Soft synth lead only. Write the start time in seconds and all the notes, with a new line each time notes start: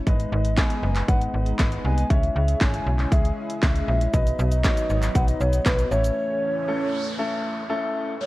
0.07 D#5
0.32 D#5
0.57 G#5
1.08 F#5
1.85 G#5
2.10 E5
2.35 E5
2.61 G#5
3.12 E5
3.88 E5
4.14 D#5
4.39 D#5
5.15 F#5
5.28 D#5
5.41 C#5
5.66 B4
5.92 C#5
8.20 C#5